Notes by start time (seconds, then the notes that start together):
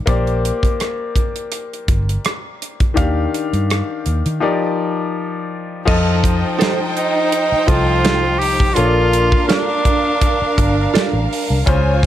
0.06 A#1 A#3 G4 C5 D5, kick, closed hi-hat
0.27 closed hi-hat
0.45 closed hi-hat
0.63 muted fingered electric bass stroke, kick, closed hi-hat
0.80 cross-stick, closed hi-hat
1.16 kick, closed hi-hat
1.36 closed hi-hat
1.52 closed hi-hat
1.73 closed hi-hat
1.88 G1, kick, closed hi-hat
2.09 closed hi-hat
2.25 cross-stick, closed hi-hat
2.62 closed hi-hat
2.80 kick, closed hi-hat
2.94 D#2 D#3 D4 G4 F5, kick, closed hi-hat
3.34 closed hi-hat
3.53 G2, closed hi-hat
3.70 cross-stick, closed hi-hat
4.06 D#2, closed hi-hat
4.26 D#3, closed hi-hat
4.40 F3 D#4 G4 A#4 D5
5.85 F2 F3 D#4 F4 A4 C5 D#5 G5, kick, crash
6.24 kick, closed hi-hat
6.59 D#4 A4 C5, snare, closed hi-hat
6.96 D#4, closed hi-hat
7.32 closed hi-hat
7.52 muted fingered electric bass stroke
7.67 C2 F3 F4 A4 D#5, kick, closed hi-hat
8.05 D#4 A4 C5, snare, closed hi-hat
8.39 G4, open hi-hat
8.60 kick
8.74 A#1 A#3 D4 F4 A4 A#4 C#5 F5, closed hi-hat
8.84 D5
9.13 closed hi-hat
9.32 kick
9.47 D4 F4 A4 D5, snare, closed hi-hat
9.85 kick, closed hi-hat
10.21 kick, closed hi-hat
10.42 muted fingered electric bass stroke
10.58 G1, kick, closed hi-hat
10.94 F4 A4 D5, muted fingered electric bass stroke, snare, closed hi-hat
11.13 A1
11.33 open hi-hat
11.50 C2
11.65 C#2 C#3 C#4 F4 C5 C#5 G#5, kick, closed hi-hat